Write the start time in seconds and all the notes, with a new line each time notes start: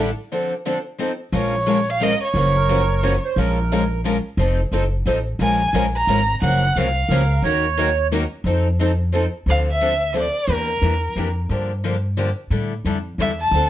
Already playing: A1
0.32 D3 F3 C4 D4 A4
0.66 D3 F3 C4 D4 A4
0.98 F3 C4 D#4 A4
1.32 A#1 F3 G#3 C#4 F4 A#4 C#5
1.66 F3 G#3 C#4 F4 A#4
1.90 F5
2.00 F3 G#3 C#4 F4 A#4 D#5
2.24 C#5
2.34 F#1 C#3 F3 F#3 A#3 C#4 F4 F#4 A#4
2.56 A#4
2.69 C#3 F3 F#3 A#3 C#4 F4 F#4 A#4
3.03 C#3 F3 F#3 A#3 C#4 F4 F#4 A#4 C#5
3.25 C5
3.36 A#1 F3 G#3 C#4 F4 A#4
3.72 F3 G#3 C#4 F4 A#4
4.04 F3 G#3 C#4 F4 A#4
4.37 F1 F3 C4 D#4 A4
4.71 F#1 F3 C4 D#4 A4
5.06 A1 F3 C4 D#4 A4
5.39 A#1 F3 G#3 C#4 F4 A#4 G#5
5.73 A#1 F3 G#3 C#4 F4 A#4
5.97 A#5
6.07 G#1 F3 G#3 C#4 F4 A#4
6.42 F#1 C#3 F3 F#3 A#3 C#4 F4 F#4 A#4 F#5
6.76 C2 C#3 F3 F#3 A#3 C#4 F4 F#4 A#4 F5
7.09 C#2 C#3 F3 F#3 A#3 C#4 F4 A#4
7.13 F#4
7.42 D#2 D#3 F#3 A#3 C#4 D#4 F#4 A#4 C#5
7.77 D#3 F#3 A#3 C#4 D#4 F#4 A#4
8.12 D#3 F#3 A#3 C#4 D#4 F#4 A#4
8.44 F2 F3 C4 D#4 A4
8.79 F3 C4 D#4 A4
9.12 F3 C4 D#4 A4
9.46 D2 D3 F3 C4 D4 A4 F5
9.72 E5
9.81 D3 F3 C4 D4 A4
10.14 D3 F3 C4 D4 A4
10.20 D5
10.48 E2 E3 A#3 D4 G4
10.54 A#4
10.82 E2 E3 A#3 D4 G4
11.16 F2 E3 A#3 D4 G4
11.49 G2 D3 F3 A#3 D4 G4
11.84 D3 F3 A#3 D4 G4
12.17 D3 F3 A#3 D4 G4
12.50 A2 D3 G3 D4 E4 A4
12.85 F2 D3 G3 D4 E4 A4
13.18 E2 D3 G3 D4 E4 A4 E5
13.41 A5
13.51 D2 D3 F3
13.55 C4 D4 A4